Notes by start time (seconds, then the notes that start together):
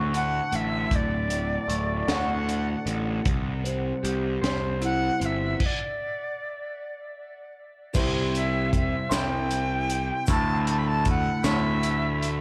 Already playing: D2 A2 A3 D4 F#4
0.13 D3 F#5, closed hi-hat
0.51 A1 A2 E5, closed hi-hat
0.90 D1 D2, kick, closed hi-hat
0.95 D5
1.29 A2, closed hi-hat
1.68 D1 A3, closed hi-hat
2.08 D2 F#4 F#5, snare, closed hi-hat
2.47 D3, closed hi-hat
2.86 A1 A2, closed hi-hat
3.25 C2 C3, kick, closed hi-hat
3.64 C4, closed hi-hat
4.03 C2 G4, closed hi-hat
4.42 C2 C5, snare, closed hi-hat
4.82 E4 F#5, closed hi-hat
5.20 G1 C4, closed hi-hat
5.25 E5
5.60 kick, crash
5.65 D5
7.93 C2 C3 G3 C4 E4 G4 C5, kick, crash, shaker
8.35 E5, closed hi-hat
8.73 E5, kick, closed hi-hat
9.09 C2 C3 G3 C4 E4 G4 C5, snare, closed hi-hat, shaker
9.14 G5
9.50 closed hi-hat, shaker
9.90 closed hi-hat
10.27 D2 A2 D3 A3 E4 A5, kick, closed hi-hat, shaker
10.67 A5, closed hi-hat
10.78 B5
10.87 A5
11.05 kick, closed hi-hat
11.09 F#5
11.43 D2 A2 D3 A3 E4 E5, snare, closed hi-hat, shaker
11.83 closed hi-hat, shaker
12.22 closed hi-hat